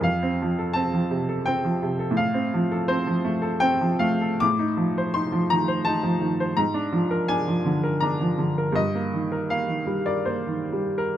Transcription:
X:1
M:3/4
L:1/16
Q:1/4=82
K:F
V:1 name="Grand piano"
f4 a4 g4 | f4 c4 g2 f2 | [K:Bb] d'4 c'2 b2 a4 | b4 _a4 b2 z2 |
e4 f3 d c3 B |]
V:2 name="Grand piano"
F,, C F, A C F, C, A C F, C, A | A,, C F, A C F, A, A C F, A, A | [K:Bb] A,, E F, c E F, E, c E F, E, c | _A,, D F, B D F, D, B D F, D, B |
G,, B, E, B B, E, G, B B, E, G,2 |]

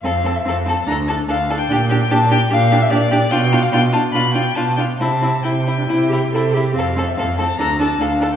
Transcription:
X:1
M:4/4
L:1/16
Q:1/4=145
K:F
V:1 name="Violin"
f3 e f2 a2 b2 a2 f3 g- | g3 g a2 g2 f3 e d4 | g3 f g2 a2 =b2 g2 a2 g2 | a4 g8- g2 z2 |
f3 e f2 a2 b2 a2 f3 z |]
V:2 name="Violin"
A2 A2 A2 A2 A2 A2 A2 A2 | G2 G2 G2 G2 G2 G2 G2 G2 | F2 F2 F2 F2 F2 F2 F2 F2 | E2 E2 E2 E2 E2 E2 E2 E2 |
A2 A2 A2 A2 A2 A2 A2 A2 |]
V:3 name="Viola"
C2 C2 C2 C2 D2 D2 D2 D2 | D2 D2 D2 D2 D2 D2 D2 D2 | D2 D2 D2 D2 D2 D2 D2 D2 | C2 C2 E3 D E2 G2 A2 G2 |
C2 C2 C2 C2 D2 D2 D2 D2 |]
V:4 name="Cello" clef=bass
F,,4 F,,4 D,,4 D,,4 | B,,4 B,,4 B,,4 B,,4 | =B,,4 B,,4 B,,4 B,,4 | C,4 C,4 C,4 C,4 |
F,,4 F,,4 D,,4 D,,4 |]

